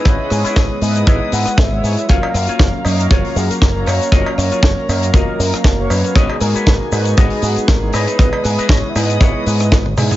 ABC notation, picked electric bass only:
X:1
M:4/4
L:1/8
Q:"Swing 16ths" 1/4=118
K:F#
V:1 name="Picked electric bass" clef=bass
G,,, G,, G,,, G,, G,,, G,, G,,, G,, | F,,, F,, F,,, F,, F,,, F,, F,,, F,, | F,,, F,, F,,, F,, F,,, F,, F,,, F,, | G,,, G,, G,,, G,, G,,, G,, G,,, G,, |
G,,, G,, G,,, G,, G,,, G,, G,,, G,, |]